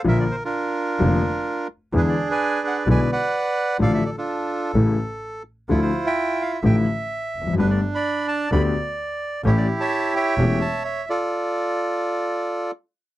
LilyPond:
<<
  \new Staff \with { instrumentName = "Bandoneon" } { \time 4/4 \key d \minor \tempo 4 = 128 << { e''16 d''16 c''16 bes'2~ bes'8. r8 | b'16 d''8 gis''8. fis''8 gis''8 fis''4. | f''16 e''16 d''16 a'2~ a'8. r8 | a'16 c''8 g''8. f''8 g''8 r4. |
b'16 d''8 b''8. a''8 b''8 r4. | cis''16 d''8 a''8. g''4 a''8 e''8 d''8~ | d''2. r4 | } \\ { bes'8. <d' f'>2~ <d' f'>8. r8 | <d' gis'>8. <b' d''>4~ <b' d''>16 <b' d''>8 <b' d''>4. | <a' d''>8. <d' f'>4~ <d' f'>16 r2 | <e' f'>8. e''4~ e''16 e''2 |
d'8. d''4~ d''16 d''2 | <e' g'>8. <cis'' e''>8. <cis'' e''>2 <f' a'>8~ | <f' a'>2. r4 | } >> }
  \new Staff \with { instrumentName = "Grand piano" } { \clef bass \time 4/4 \key d \minor <bes,, bes, d f bes f'>8 r4. <f,, f, d f bes f'>8 r4. | <e, d e gis b e'>8 r4. <b,, b, d gis b e'>8 r4. | <a,, a, d f a f'>8 r4. <a,, a, cis e a e'>8 r4. | <d, d f a e'>8 r4. <a,, a, d f a e'>8 r4 r32 e,32 f,32 fis,32 |
<g,, g, d a b g'>8 r4. <d, d a b g'>8 r4. | <a,, a, e a cis' g'>8 r4. <e,, e, e a cis' g'>8 r4. | r1 | }
  \new Staff \with { instrumentName = "Double bass" } { \clef bass \time 4/4 \key d \minor bes,,8 r4. f,,8 r4. | e,8 r4. b,,8 r4. | a,,8 r4. a,,8 r4. | d,8 r4. a,,8 r4 f,,8 |
g,,8 r4. d,8 r4. | a,,8 r4. e,,8 r4. | r1 | }
>>